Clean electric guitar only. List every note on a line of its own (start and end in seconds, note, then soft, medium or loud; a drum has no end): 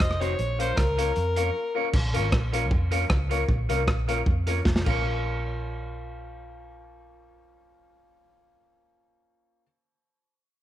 0.21 0.33 D#4 medium
0.21 0.34 F#4 medium
0.21 0.34 C5 medium
0.59 0.72 F4 medium
0.59 0.72 A#4 medium
0.59 0.72 C#5 medium
0.97 1.10 F4 medium
0.97 1.11 A#4 medium
0.97 1.11 C#5 loud
1.36 1.49 F4 medium
1.36 1.49 A#4 medium
1.36 1.50 C#5 medium
1.75 1.88 F4 medium
1.75 1.88 A#4 medium
1.75 1.89 C#5 loud
2.14 2.27 F4 medium
2.14 2.27 A#4 medium
2.14 2.28 C#5 medium
2.31 muted clean electric guitar stroke soft
2.52 2.65 F4 medium
2.52 2.66 A#4 medium
2.52 2.66 C#5 loud
2.91 3.04 F4 medium
2.91 3.04 A#4 loud
2.91 3.05 C#5 medium
3.29 3.43 F4 medium
3.29 3.43 A#4 medium
3.29 3.44 C#5 loud
3.69 3.82 F4 medium
3.69 3.82 A#4 medium
3.69 3.83 C#5 medium
3.88 muted clean electric guitar stroke medium
4.08 4.21 F4 medium
4.08 4.21 A#4 medium
4.08 4.22 C#5 medium
4.47 4.60 F4 medium
4.47 4.60 A#4 medium
4.47 4.60 C#5 loud
4.85 9.65 F4 medium
4.85 9.67 A#4 medium
4.90 9.68 C#5 loud